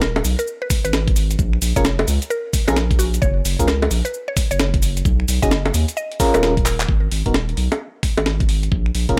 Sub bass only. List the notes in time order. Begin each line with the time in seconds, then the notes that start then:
Already playing: D#1
0.24 B1
0.85 G#1
1.39 A#1
1.62 A#1
1.76 F1
2.08 C#2
2.68 A#1
3.22 F#1
3.45 F#1
3.59 C#2
3.91 A#1
4.51 F#1
5.05 B1
5.28 B1
5.43 F#1
5.74 D#2
6.34 D#1
6.89 G#1
7.11 G#1
7.26 D#1
7.57 B1
8.17 G#1
8.72 A#1
8.95 A#1
9.09 F1